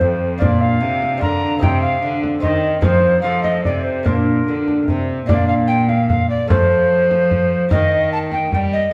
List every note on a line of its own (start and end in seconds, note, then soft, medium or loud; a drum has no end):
0.00 0.43 F2 medium
0.00 0.37 F2 soft
0.00 0.37 C4 soft
0.00 0.37 F4 soft
0.00 0.39 A4 soft
0.00 0.42 C5 medium
0.00 frame drum soft
0.38 0.77 A#2 medium
0.38 0.83 A#2 medium
0.38 1.16 D4 soft
0.38 1.18 F4 soft
0.38 1.19 A#4 soft
0.38 0.62 D5 medium
0.38 frame drum medium
0.61 1.21 F5 medium
0.81 1.17 C3 medium
0.81 1.23 C3 medium
1.02 frame drum soft
1.18 1.58 D3 soft
1.18 1.61 D3 medium
1.18 1.58 D4 soft
1.18 1.59 F4 soft
1.18 1.59 A#4 soft
1.22 1.61 A#5 medium
1.22 frame drum soft
1.58 2.01 C3 medium
1.58 1.99 C3 medium
1.58 2.39 C4 soft
1.58 2.40 G4 soft
1.58 2.39 D#5 soft
1.58 1.81 G5 medium
1.63 frame drum medium
1.81 2.20 F5 medium
2.02 2.41 D3 medium
2.02 2.39 D3 soft
2.24 frame drum soft
2.40 2.81 D#3 medium
2.40 2.80 D#3 soft
2.40 2.80 C4 soft
2.40 2.81 D#4 soft
2.40 2.82 G4 soft
2.40 2.84 D#5 medium
2.40 frame drum soft
2.81 3.22 F3 medium
2.81 3.21 F3 medium
2.81 3.21 C4 soft
2.81 3.22 D#4 soft
2.81 3.23 A#4 soft
2.81 3.21 C5 medium
2.81 frame drum medium
3.21 3.66 F3 medium
3.21 3.61 F3 soft
3.21 4.02 C4 soft
3.21 4.03 D#4 soft
3.21 4.04 A4 soft
3.21 3.43 F5 medium
3.43 3.63 D#5 medium
3.43 frame drum soft
3.64 4.07 C3 medium
3.64 4.03 C3 medium
3.64 3.85 D5 medium
3.64 frame drum soft
3.83 4.07 C5 medium
4.03 4.46 A#2 medium
4.03 5.24 A#3 soft
4.03 5.25 D4 soft
4.03 5.26 F4 soft
4.03 4.88 A#4 medium
4.03 frame drum medium
4.07 4.44 A#2 soft
4.47 4.86 D3 medium
4.47 4.85 D3 soft
4.68 frame drum soft
4.87 5.28 C3 medium
4.87 5.26 C3 soft
4.87 frame drum soft
5.26 6.46 A#2 medium
5.26 6.47 A#2 medium
5.26 6.45 A#3 soft
5.26 6.46 D4 medium
5.26 6.47 F4 soft
5.26 5.47 D5 medium
5.26 frame drum medium
5.48 5.54 F5 medium
5.67 5.90 G5 medium
5.89 6.09 F5 medium
5.89 frame drum soft
6.09 6.29 F5 medium
6.09 frame drum medium
6.30 6.49 D5 medium
6.47 7.69 F3 medium
6.47 7.68 F3 soft
6.47 7.67 A3 soft
6.47 7.67 F4 soft
6.47 7.69 C5 medium
6.47 frame drum medium
7.11 frame drum soft
7.31 frame drum medium
7.69 8.49 D#3 medium
7.69 8.88 A#3 medium
7.69 8.88 G4 soft
7.69 8.89 A#4 medium
7.69 8.11 D#5 medium
7.69 frame drum medium
7.73 8.51 D#3 medium
8.12 8.18 A5 loud
8.32 8.52 G5 medium
8.32 frame drum soft
8.52 8.92 G3 medium
8.52 8.90 G3 medium
8.52 8.59 G5 medium
8.52 frame drum medium
8.73 8.93 D#5 medium